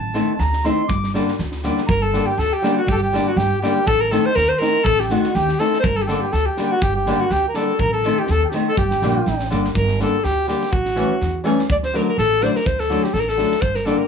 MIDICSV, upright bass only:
0, 0, Header, 1, 2, 480
1, 0, Start_track
1, 0, Key_signature, -2, "minor"
1, 0, Tempo, 493421
1, 872, Time_signature, 2, 2, 24, 8
1, 7106, Tempo, 485044
1, 13807, End_track
2, 0, Start_track
2, 0, Title_t, "Upright bass"
2, 0, Program_c, 0, 32
2, 0, Note_on_c, 0, 33, 86
2, 191, Note_off_c, 0, 33, 0
2, 381, Note_on_c, 0, 38, 96
2, 673, Note_off_c, 0, 38, 0
2, 862, Note_on_c, 0, 31, 85
2, 1155, Note_off_c, 0, 31, 0
2, 1354, Note_on_c, 0, 38, 100
2, 1643, Note_off_c, 0, 38, 0
2, 1837, Note_on_c, 0, 31, 92
2, 2125, Note_off_c, 0, 31, 0
2, 2310, Note_on_c, 0, 38, 93
2, 2457, Note_off_c, 0, 38, 0
2, 2791, Note_on_c, 0, 31, 91
2, 3082, Note_off_c, 0, 31, 0
2, 3272, Note_on_c, 0, 31, 96
2, 3418, Note_off_c, 0, 31, 0
2, 3757, Note_on_c, 0, 33, 83
2, 4046, Note_off_c, 0, 33, 0
2, 4239, Note_on_c, 0, 39, 87
2, 4383, Note_off_c, 0, 39, 0
2, 4714, Note_on_c, 0, 33, 99
2, 5003, Note_off_c, 0, 33, 0
2, 5203, Note_on_c, 0, 39, 96
2, 5345, Note_off_c, 0, 39, 0
2, 5680, Note_on_c, 0, 31, 86
2, 5966, Note_off_c, 0, 31, 0
2, 6156, Note_on_c, 0, 38, 86
2, 6298, Note_off_c, 0, 38, 0
2, 6629, Note_on_c, 0, 31, 75
2, 6916, Note_off_c, 0, 31, 0
2, 7105, Note_on_c, 0, 38, 93
2, 7251, Note_off_c, 0, 38, 0
2, 7588, Note_on_c, 0, 33, 83
2, 7880, Note_off_c, 0, 33, 0
2, 8079, Note_on_c, 0, 39, 91
2, 8224, Note_off_c, 0, 39, 0
2, 8559, Note_on_c, 0, 31, 92
2, 8704, Note_off_c, 0, 31, 0
2, 8803, Note_on_c, 0, 34, 72
2, 9020, Note_off_c, 0, 34, 0
2, 9042, Note_on_c, 0, 33, 81
2, 9260, Note_off_c, 0, 33, 0
2, 9290, Note_on_c, 0, 31, 76
2, 9504, Note_off_c, 0, 31, 0
2, 9527, Note_on_c, 0, 31, 88
2, 9815, Note_off_c, 0, 31, 0
2, 10011, Note_on_c, 0, 38, 87
2, 10298, Note_off_c, 0, 38, 0
2, 10495, Note_on_c, 0, 33, 76
2, 10780, Note_off_c, 0, 33, 0
2, 10972, Note_on_c, 0, 40, 85
2, 11258, Note_off_c, 0, 40, 0
2, 11449, Note_on_c, 0, 38, 83
2, 11735, Note_off_c, 0, 38, 0
2, 11927, Note_on_c, 0, 33, 93
2, 12213, Note_off_c, 0, 33, 0
2, 12409, Note_on_c, 0, 38, 67
2, 12692, Note_off_c, 0, 38, 0
2, 12878, Note_on_c, 0, 33, 80
2, 13163, Note_off_c, 0, 33, 0
2, 13352, Note_on_c, 0, 31, 69
2, 13636, Note_off_c, 0, 31, 0
2, 13807, End_track
0, 0, End_of_file